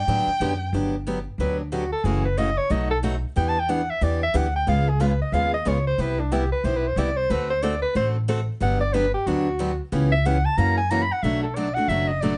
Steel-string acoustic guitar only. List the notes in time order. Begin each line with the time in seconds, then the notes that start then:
0.08 D3 F#3 B3 D4 G4
0.41 D3 F#3 B3 D4 G4
0.74 D3 F#3 B3 D4 G4
1.07 D3 F#3 B3 D4 G4
1.40 D3 F#3 B3 D4 G4
1.72 D3 F#3 B3 D4 G4
2.05 C#3 E3 A3 C#4 F#4
2.38 C#3 E3 A3 C#4 F#4
2.70 B2 F#3 A3 D#4 F#4
3.03 B2 F#3 A3 D#4 F#4
3.36 E3 B3 D4 G4
3.69 E3 B3 D4 G4
4.01 E3 B3 D4 G4
4.34 E3 B3 D4 G4
4.67 C#3 G#3 B3 F4 G#4
5.00 C#3 G#3 B3 F4 G#4
5.33 C#3 G#3 B3 F4 G#4
5.65 C#3 G#3 B3 F4 G#4
5.98 C3 G3 B3 E4 G4
6.32 C3 G3 B3 E4 G4
6.64 C3 G3 B3 E4 G4
6.97 C3 G3 B3 E4 G4
7.30 D3 A3 C4 F#4 A4
7.62 D3 A3 C4 F#4 A4
7.95 D3 A3 C4 F#4 A4
8.28 D3 A3 C4 F#4 A4
8.60 D3 F#3 B3 D4 G4
8.94 D3 F#3 B3 D4 G4
9.27 D3 F#3 B3 D4 G4
9.59 D3 F#3 B3 D4 G4
9.92 C#3 E3 B3 C#4 G4
10.25 C#3 E3 B3 C#4 G4
10.58 C#3 E3 A#3 C#4 F#4
10.91 C#3 E3 A#3 C#4 F#4
11.24 B2 F#3 A3 D4 F#4
11.56 B2 F#3 A3 D4 F#4
11.76 A3 D4 F#4
11.89 B2 F#3 A3 D4 F#4
12.22 B2 F#3 A3 D4 F#4